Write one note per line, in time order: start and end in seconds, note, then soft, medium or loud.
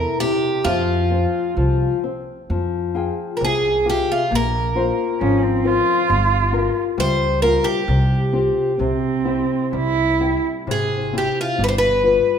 0.00 0.20 C3 medium
0.00 0.20 E4 medium
0.00 0.20 A#4 loud
0.20 0.65 C3 medium
0.20 0.67 G4 medium
0.64 1.25 F2 loud
0.64 1.56 F3 medium
0.64 1.99 F4 medium
1.11 1.55 C4 medium
1.57 1.87 C2 medium
1.57 2.02 F3 medium
2.04 2.48 C4 medium
2.50 3.09 F2 medium
2.50 3.39 F3 medium
2.95 3.68 F4 soft
2.95 3.68 G#4 medium
2.95 3.68 G5 soft
3.37 4.28 C3 medium
3.37 3.42 A#4 medium
3.41 4.00 C2 medium
3.41 3.89 G#4 medium
3.86 4.22 F4 soft
3.86 4.22 G4 soft
3.86 4.11 G4 medium
3.86 4.22 G#4 medium
4.12 4.33 F4 medium
4.31 4.90 A#1 medium
4.31 5.18 A#3 medium
4.35 5.64 A#4 loud
4.75 5.47 F4 soft
4.75 5.47 A#4 soft
4.75 5.48 C5 medium
5.20 5.79 G#1 medium
5.20 6.07 F3 medium
5.20 5.44 C#4 medium
5.43 5.68 C4 medium
5.64 6.00 F4 soft
5.64 6.77 F4 medium
5.64 6.00 A#4 soft
5.64 6.01 C5 medium
6.09 6.67 G1 loud
6.09 6.52 G3 medium
6.53 7.25 F4 soft
6.53 7.25 G4 soft
6.53 7.25 A#4 medium
6.97 7.56 C#2 medium
6.97 7.85 G3 medium
6.97 7.41 C5 loud
7.42 7.79 F4 medium
7.42 7.79 G4 soft
7.42 7.66 A#4 medium
7.42 7.79 A#4 medium
7.64 8.98 G4 medium
7.88 8.47 C2 loud
7.88 8.77 C3 medium
8.33 8.70 C4 soft
8.33 8.70 F4 soft
8.33 8.70 G4 medium
8.79 9.41 C2 medium
8.79 9.71 C3 medium
8.79 9.70 C4 medium
9.25 10.02 C4 soft
9.25 10.02 E4 soft
9.25 10.02 G4 medium
9.73 10.35 C2 medium
9.73 10.65 G3 medium
9.73 10.42 E4 loud
10.20 10.95 C4 soft
10.20 10.95 E4 soft
10.20 10.95 G5 soft
10.67 11.27 G#1 medium
10.67 11.56 C3 medium
10.71 11.17 G#4 medium
11.13 11.49 C4 medium
11.13 11.50 E4 soft
11.13 11.50 G4 soft
11.18 11.39 G4 medium
11.41 11.62 F4 medium
11.59 12.16 G1 medium
11.59 12.39 G3 medium
11.64 11.68 B4 medium
11.68 11.74 C5 medium
11.78 12.39 B4 medium
12.03 12.39 F4 soft
12.03 12.39 G4 soft
12.03 12.39 B4 medium